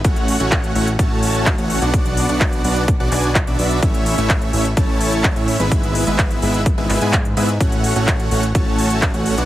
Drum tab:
HH |xxoxxxoxx-oxxxox|xxoxxxoxx-oxxxox|xxoxxxoxx-oxxxox|xxoxxxoxx-oxxxox|
CP |----x-------x---|----x-----x-x---|----x-------x---|----x-----x-x---|
BD |o---o---o---o---|o---o---o---o---|o---o---o---o---|o---o---o---o---|

HH |xxoxxxoxx-oxxxox|
CP |----x-------x---|
BD |o---o---o---o---|